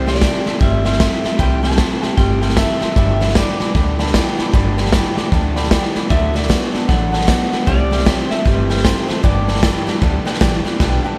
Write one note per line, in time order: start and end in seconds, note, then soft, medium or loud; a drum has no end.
0.00 0.27 C2 loud
0.07 0.20 C3 medium
0.07 0.21 G3 medium
0.07 0.21 A3 soft
0.07 0.21 E4 soft
0.07 0.22 G4 medium
0.07 0.58 D5 medium
0.07 0.16 E5 medium
0.07 0.16 G5 medium
0.07 0.16 C6 medium
0.07 snare soft
0.15 snare soft
0.21 0.46 C3 medium
0.21 0.46 E3 medium
0.21 0.46 A3 medium
0.21 0.45 E4 medium
0.21 0.44 G4 medium
0.21 0.37 E5 medium
0.21 0.37 G5 medium
0.21 0.37 C6 medium
0.21 kick medium
0.21 snare loud
0.21 hi-hat pedal medium
0.45 0.60 C3 medium
0.45 0.60 A3 soft
0.45 0.61 E4 medium
0.45 0.61 G4 medium
0.45 0.55 E5 medium
0.45 0.55 G5 medium
0.45 0.55 A5 medium
0.45 muted upright bass stroke medium
0.45 snare soft
0.60 1.05 G1 medium
0.60 0.83 C3 medium
0.60 0.85 E3 medium
0.60 0.83 G3 medium
0.60 0.85 A3 medium
0.60 0.85 E4 medium
0.60 0.83 G4 medium
0.60 0.76 E5 medium
0.60 0.84 E5 medium
0.60 0.76 G5 medium
0.60 0.76 C6 medium
0.60 kick loud
0.60 snare soft
0.85 0.99 C3 medium
0.85 0.99 G3 medium
0.85 0.99 A3 soft
0.85 1.00 E4 soft
0.85 1.00 G4 medium
0.85 0.94 E5 medium
0.85 1.36 E5 loud
0.85 0.94 G5 medium
0.85 0.94 C6 loud
0.85 snare soft
0.93 snare soft
0.99 1.24 C3 medium
0.99 1.24 E3 medium
0.99 1.25 A3 medium
0.99 1.24 E4 medium
0.99 1.23 G4 medium
0.99 1.14 E5 loud
0.99 1.14 G5 medium
0.99 1.14 C6 loud
0.99 kick medium
0.99 snare loud
0.99 hi-hat pedal medium
1.24 1.38 C3 medium
1.24 1.38 A3 soft
1.24 1.39 E4 soft
1.24 1.39 G4 medium
1.24 1.33 E5 medium
1.24 1.33 G5 medium
1.24 1.33 C6 medium
1.24 muted upright bass stroke medium
1.24 snare soft
1.38 1.84 C2 medium
1.38 1.63 C3 medium
1.38 1.64 E3 medium
1.38 1.61 G3 medium
1.38 1.64 A3 medium
1.38 1.63 E4 medium
1.38 1.61 G4 medium
1.38 1.54 E5 medium
1.38 1.54 G5 medium
1.38 1.63 G5 loud
1.38 1.54 B5 loud
1.38 kick loud
1.38 snare soft
1.62 1.77 C3 medium
1.62 1.77 G3 medium
1.62 1.78 A3 soft
1.62 1.79 E4 soft
1.62 1.78 G4 medium
1.62 1.72 E5 medium
1.62 1.72 G5 medium
1.62 2.06 A5 loud
1.62 1.72 C6 medium
1.62 snare soft
1.71 snare soft
1.77 2.03 C3 medium
1.77 2.03 E3 medium
1.77 2.03 A3 medium
1.77 2.03 E4 medium
1.77 2.01 G4 medium
1.77 1.93 E5 medium
1.77 1.93 G5 medium
1.77 1.93 C6 medium
1.77 kick medium
1.77 snare loud
1.77 hi-hat pedal medium
2.02 2.16 C3 medium
2.02 2.17 A3 soft
2.02 2.18 E4 medium
2.02 2.18 G4 medium
2.02 2.11 E5 medium
2.02 2.12 G5 medium
2.02 2.12 C6 medium
2.02 muted upright bass stroke medium
2.02 snare soft
2.06 2.17 G5 loud
2.16 2.62 G1 medium
2.16 2.39 C3 medium
2.16 2.42 E3 medium
2.16 2.40 G3 medium
2.16 2.42 A3 medium
2.16 2.42 E4 medium
2.16 2.40 G4 medium
2.16 2.32 E5 medium
2.16 2.32 G5 medium
2.16 2.56 G5 medium
2.16 2.32 C6 medium
2.16 kick loud
2.16 snare soft
2.41 2.55 C3 medium
2.41 2.56 G3 medium
2.41 2.56 A3 soft
2.41 2.57 E4 medium
2.41 2.57 G4 medium
2.41 2.51 E5 medium
2.41 2.51 G5 medium
2.41 2.51 A5 medium
2.41 snare soft
2.49 snare soft
2.56 2.81 C3 medium
2.56 2.81 E3 medium
2.56 2.82 A3 medium
2.56 2.81 E4 medium
2.56 2.79 G4 loud
2.56 2.95 E5 medium
2.56 2.71 E5 loud
2.56 2.71 G5 medium
2.56 2.72 A5 loud
2.56 kick medium
2.56 snare loud
2.56 hi-hat pedal medium
2.81 2.95 C3 medium
2.81 2.97 A3 soft
2.81 2.97 E4 medium
2.81 2.96 G4 medium
2.81 2.90 E5 medium
2.81 2.90 G5 medium
2.81 2.90 C6 medium
2.81 muted upright bass stroke medium
2.81 snare soft
2.95 3.41 G1 medium
2.95 3.21 G2 medium
2.95 3.21 D3 medium
2.95 3.21 E3 medium
2.95 3.21 G3 medium
2.95 3.20 B3 medium
2.95 3.19 G4 medium
2.95 3.11 D5 medium
2.95 3.33 E5 medium
2.95 3.11 G5 medium
2.95 3.11 B5 loud
2.95 kick loud
2.95 snare soft
3.20 3.34 G2 medium
3.20 3.34 D3 medium
3.20 3.35 E3 soft
3.20 3.35 G3 soft
3.20 3.35 B3 medium
3.20 3.35 G4 medium
3.20 3.30 D5 medium
3.20 3.30 G5 medium
3.20 3.30 B5 medium
3.20 snare soft
3.28 snare soft
3.35 3.60 G2 medium
3.35 3.60 D3 medium
3.35 3.60 E3 medium
3.35 3.60 G3 loud
3.35 3.60 B3 medium
3.35 3.59 G4 medium
3.35 3.50 D5 medium
3.35 3.95 D5 medium
3.35 3.50 G5 medium
3.35 3.50 B5 medium
3.35 kick medium
3.35 snare loud
3.35 hi-hat pedal medium
3.59 3.73 G2 medium
3.59 3.74 E3 soft
3.59 3.75 G3 soft
3.59 3.75 B3 medium
3.59 3.75 G4 medium
3.59 3.69 D5 medium
3.59 3.69 G5 medium
3.59 3.69 B5 medium
3.59 muted upright bass stroke medium
3.59 snare soft
3.75 4.19 D2 medium
3.75 3.97 G2 medium
3.75 3.97 D3 medium
3.75 3.99 E3 medium
3.75 4.00 G3 medium
3.75 3.99 B3 medium
3.75 3.98 G4 medium
3.75 3.89 D5 medium
3.75 3.90 G5 medium
3.75 3.90 B5 medium
3.75 kick loud
3.75 snare soft
3.99 4.13 G2 medium
3.99 4.13 D3 medium
3.99 4.14 E3 medium
3.99 4.14 G3 medium
3.99 4.14 B3 medium
3.99 4.14 G4 medium
3.99 4.08 D5 loud
3.99 4.08 G5 loud
3.99 4.08 B5 loud
3.99 snare soft
4.07 snare soft
4.14 4.38 G2 medium
4.14 4.39 D3 medium
4.14 4.39 E3 medium
4.14 4.39 G3 medium
4.14 4.38 B3 loud
4.14 4.37 G4 loud
4.14 4.29 D5 loud
4.14 4.29 G5 loud
4.14 4.29 B5 loud
4.14 kick medium
4.14 snare loud
4.14 hi-hat pedal loud
4.38 4.52 G2 medium
4.38 4.53 E3 medium
4.38 4.53 G3 medium
4.38 4.54 B3 medium
4.38 4.53 G4 medium
4.38 4.47 D5 medium
4.38 4.48 G5 medium
4.38 4.48 B5 medium
4.38 muted upright bass stroke medium
4.38 snare soft
4.53 4.98 G1 medium
4.53 4.78 G2 medium
4.53 4.78 D3 medium
4.53 4.78 E3 medium
4.53 4.78 G3 medium
4.53 4.77 B3 medium
4.53 4.77 G4 medium
4.53 4.68 D5 loud
4.53 4.68 G5 loud
4.53 4.68 B5 loud
4.53 kick loud
4.53 snare soft
4.77 4.92 G2 medium
4.77 4.92 D3 medium
4.77 4.93 E3 medium
4.77 4.93 G3 medium
4.77 4.93 B3 medium
4.77 4.93 G4 medium
4.77 4.86 D5 medium
4.77 4.87 G5 medium
4.77 4.87 B5 medium
4.77 snare soft
4.85 snare soft
4.92 5.17 G2 loud
4.92 5.17 D3 loud
4.92 5.18 E3 loud
4.92 5.18 G3 medium
4.92 5.17 B3 medium
4.92 5.16 G4 medium
4.92 5.07 D5 medium
4.92 5.07 G5 medium
4.92 5.07 B5 medium
4.92 kick medium
4.92 snare loud
4.92 hi-hat pedal medium
5.17 5.31 G2 medium
5.17 5.31 E3 medium
5.17 5.32 G3 medium
5.17 5.33 B3 medium
5.17 5.32 G4 medium
5.17 5.26 D5 medium
5.17 5.26 G5 medium
5.17 5.26 D6 medium
5.17 muted upright bass stroke medium
5.17 snare soft
5.31 5.77 D2 medium
5.31 5.54 G2 medium
5.31 5.54 D3 medium
5.31 5.56 E3 medium
5.31 5.57 G3 medium
5.31 5.56 B3 medium
5.31 5.55 G4 medium
5.31 5.46 D5 medium
5.31 5.46 G5 medium
5.31 5.46 D6 medium
5.31 kick loud
5.31 snare soft
5.56 5.70 G2 medium
5.56 5.70 D3 medium
5.56 5.71 E3 soft
5.56 5.71 G3 medium
5.56 5.71 B3 medium
5.56 5.71 G4 medium
5.56 5.65 D5 loud
5.56 5.65 G5 loud
5.56 5.65 B5 loud
5.56 snare soft
5.64 snare soft
5.71 5.95 G2 medium
5.71 5.96 D3 medium
5.71 5.96 E3 medium
5.71 5.96 G3 loud
5.71 5.95 B3 medium
5.71 5.94 G4 medium
5.71 5.86 D5 loud
5.71 5.86 G5 loud
5.71 5.86 B5 loud
5.71 kick medium
5.71 snare loud
5.71 hi-hat pedal medium
5.95 6.09 G2 medium
5.95 6.10 E3 medium
5.95 6.11 G3 medium
5.95 6.10 B3 medium
5.95 6.10 G4 medium
5.95 6.04 D5 medium
5.95 6.04 G5 medium
5.95 6.04 B5 medium
5.95 muted upright bass stroke medium
5.95 snare soft
6.10 6.55 D2 medium
6.10 6.35 D3 medium
6.10 6.35 F#3 medium
6.10 6.35 A3 medium
6.10 6.34 B3 medium
6.10 6.33 F#4 medium
6.10 6.25 D5 loud
6.10 6.35 E5 loud
6.10 6.25 F#5 medium
6.10 6.25 A5 loud
6.10 kick loud
6.10 snare soft
6.34 6.48 D3 medium
6.34 6.48 A3 soft
6.34 6.49 B3 soft
6.34 6.49 F#4 medium
6.34 6.43 D5 medium
6.34 6.88 D5 loud
6.34 6.44 F#5 medium
6.34 6.44 A5 medium
6.34 snare soft
6.42 snare soft
6.49 6.73 D3 medium
6.49 6.74 F#3 medium
6.49 6.74 A3 medium
6.49 6.73 B3 medium
6.49 6.72 F#4 medium
6.49 6.64 D5 medium
6.49 6.64 F#5 medium
6.49 6.64 B5 medium
6.49 kick medium
6.49 snare loud
6.49 hi-hat pedal medium
6.73 6.88 D3 medium
6.73 6.88 A3 soft
6.73 6.88 B3 medium
6.73 6.88 F#4 medium
6.73 6.83 D5 medium
6.73 6.83 F#5 medium
6.73 6.83 A5 medium
6.73 muted upright bass stroke medium
6.73 snare soft
6.88 7.33 A1 medium
6.88 7.11 D3 medium
6.88 7.13 F#3 medium
6.88 7.13 A3 medium
6.88 7.12 B3 medium
6.88 7.11 F#4 medium
6.88 7.03 D5 medium
6.88 7.12 F#5 loud
6.88 7.03 F#5 medium
6.88 7.04 A5 medium
6.88 kick loud
6.88 snare soft
7.12 7.27 D3 medium
7.12 7.27 A3 soft
7.12 7.27 B3 soft
7.12 7.27 F#4 medium
7.12 7.22 D5 medium
7.12 7.67 F#5 medium
7.12 7.22 F#5 medium
7.12 7.22 A5 loud
7.12 snare soft
7.21 snare soft
7.27 7.52 D3 medium
7.27 7.52 F#3 medium
7.27 7.52 A3 medium
7.27 7.52 B3 medium
7.27 7.51 F#4 medium
7.27 7.43 D5 loud
7.27 7.43 F#5 medium
7.27 7.43 A5 loud
7.27 kick loud
7.27 snare loud
7.27 hi-hat pedal medium
7.52 7.66 D3 medium
7.52 7.66 A3 soft
7.52 7.68 B3 soft
7.52 7.67 F#4 medium
7.52 7.61 D5 medium
7.52 7.62 F#5 medium
7.52 7.62 A5 medium
7.52 muted upright bass stroke medium
7.52 snare soft
7.66 8.12 C2 medium
7.66 7.91 C3 medium
7.66 7.92 E3 medium
7.66 7.90 G3 medium
7.66 7.92 A3 medium
7.66 7.91 E4 medium
7.66 7.89 G4 medium
7.66 7.82 C5 medium
7.66 8.18 D5 loud
7.66 7.82 E5 medium
7.66 7.82 G5 loud
7.66 kick loud
7.66 snare soft
7.91 8.05 C3 medium
7.91 8.06 G3 medium
7.91 8.05 A3 soft
7.91 8.06 E4 soft
7.91 8.06 G4 medium
7.91 8.00 C5 medium
7.91 8.01 E5 medium
7.91 8.01 G5 medium
7.91 snare soft
7.99 snare soft
8.05 8.30 C3 medium
8.05 8.31 E3 medium
8.05 8.31 A3 medium
8.05 8.31 E4 medium
8.05 8.29 G4 medium
8.05 8.21 C5 medium
8.05 8.21 E5 medium
8.05 8.21 G5 medium
8.05 kick medium
8.05 snare loud
8.05 hi-hat pedal medium
8.18 8.30 C5 loud
8.30 8.44 C3 medium
8.30 8.45 A3 soft
8.30 8.46 E4 medium
8.30 8.45 G4 medium
8.30 8.39 C5 medium
8.30 8.40 E5 medium
8.30 8.46 E5 medium
8.30 8.40 G5 medium
8.30 muted upright bass stroke medium
8.30 snare soft
8.45 8.90 G1 medium
8.45 8.67 C3 medium
8.45 8.70 E3 medium
8.45 8.68 G3 medium
8.45 8.70 A3 medium
8.45 8.70 E4 medium
8.45 8.68 G4 medium
8.45 8.82 B4 medium
8.45 8.60 C5 medium
8.45 8.60 E5 medium
8.45 8.60 G5 medium
8.45 kick loud
8.45 snare soft
8.69 8.83 C3 medium
8.69 8.83 G3 medium
8.69 8.84 A3 soft
8.69 8.85 E4 medium
8.69 8.85 G4 medium
8.69 8.79 C5 loud
8.69 8.79 E5 medium
8.69 8.79 G5 loud
8.69 snare soft
8.77 snare soft
8.84 9.09 C3 medium
8.84 9.09 E3 medium
8.84 9.09 A3 medium
8.84 9.09 E4 medium
8.84 9.07 G4 medium
8.84 9.23 C5 medium
8.84 8.99 C5 loud
8.84 8.99 E5 medium
8.84 8.99 G5 loud
8.84 kick medium
8.84 snare loud
8.84 hi-hat pedal medium
9.08 9.22 C3 medium
9.08 9.24 A3 soft
9.08 9.24 E4 medium
9.08 9.24 G4 medium
9.08 9.18 C5 medium
9.08 9.18 E5 medium
9.08 9.18 G5 medium
9.08 muted upright bass stroke medium
9.08 snare soft
9.23 9.68 G1 medium
9.23 9.48 G2 medium
9.23 9.48 D3 medium
9.23 9.48 E3 medium
9.23 9.48 G3 medium
9.23 9.48 B3 medium
9.23 9.46 G4 medium
9.23 9.38 B4 medium
9.23 9.98 D5 medium
9.23 9.38 D5 medium
9.23 9.39 G5 loud
9.23 kick loud
9.23 snare soft
9.48 9.61 G2 medium
9.48 9.62 D3 medium
9.48 9.62 E3 soft
9.48 9.62 G3 soft
9.48 9.62 B3 medium
9.48 9.63 G4 medium
9.48 9.57 B4 medium
9.48 9.57 D5 medium
9.48 9.57 G5 medium
9.48 snare soft
9.55 snare soft
9.62 9.87 G2 medium
9.62 9.87 D3 medium
9.62 9.87 E3 medium
9.62 9.87 G3 medium
9.62 9.86 B3 medium
9.62 9.86 G4 medium
9.62 9.77 B4 medium
9.62 9.77 D5 medium
9.62 9.77 G5 medium
9.62 kick medium
9.62 snare loud
9.62 hi-hat pedal medium
9.87 10.00 G2 medium
9.87 10.00 E3 medium
9.87 10.01 G3 medium
9.87 10.02 B3 medium
9.87 10.02 G4 medium
9.87 9.96 B4 medium
9.87 9.96 D5 medium
9.87 9.96 G5 loud
9.87 muted upright bass stroke medium
9.87 snare soft
10.01 10.19 D2 medium
10.01 10.24 G2 medium
10.01 10.24 D3 medium
10.01 10.26 E3 medium
10.01 10.26 G3 medium
10.01 10.25 B3 medium
10.01 10.24 G4 medium
10.01 10.16 B4 medium
10.01 10.17 D5 medium
10.01 10.17 G5 medium
10.01 kick loud
10.01 snare soft
10.25 10.40 G2 medium
10.25 10.40 D3 medium
10.25 10.40 E3 medium
10.25 10.40 G3 medium
10.25 10.41 B3 medium
10.25 10.41 G4 medium
10.25 10.35 B4 loud
10.25 10.35 D5 loud
10.25 10.35 G5 loud
10.25 muted upright bass stroke medium
10.25 snare soft
10.34 snare soft
10.40 10.62 A1 medium
10.40 10.65 G2 medium
10.40 10.65 D3 loud
10.40 10.65 E3 medium
10.40 10.65 G3 medium
10.40 10.64 B3 medium
10.40 10.63 G4 loud
10.40 10.56 B4 loud
10.40 10.56 D5 loud
10.40 10.56 G5 loud
10.40 kick medium
10.40 snare loud
10.40 hi-hat pedal loud
10.65 10.79 G2 medium
10.65 10.79 E3 medium
10.65 10.80 G3 medium
10.65 10.80 B3 medium
10.65 10.80 G4 medium
10.65 10.74 B4 medium
10.65 10.74 D5 medium
10.65 10.75 G5 loud
10.65 muted upright bass stroke medium
10.65 snare soft
10.80 11.01 B1 medium
10.80 11.04 G2 medium
10.80 11.04 D3 medium
10.80 11.05 E3 medium
10.80 11.05 G3 loud
10.80 11.04 B3 medium
10.80 11.03 G4 medium
10.80 10.95 B4 loud
10.80 10.95 D5 loud
10.80 10.95 G5 loud
10.80 kick loud
10.80 snare medium
11.04 11.18 G2 medium
11.04 11.18 D3 medium
11.04 11.18 E3 soft
11.04 11.18 G3 medium
11.04 11.18 B3 medium
11.04 11.18 G4 medium
11.04 11.13 B4 medium
11.04 11.13 D5 medium
11.04 11.14 G5 loud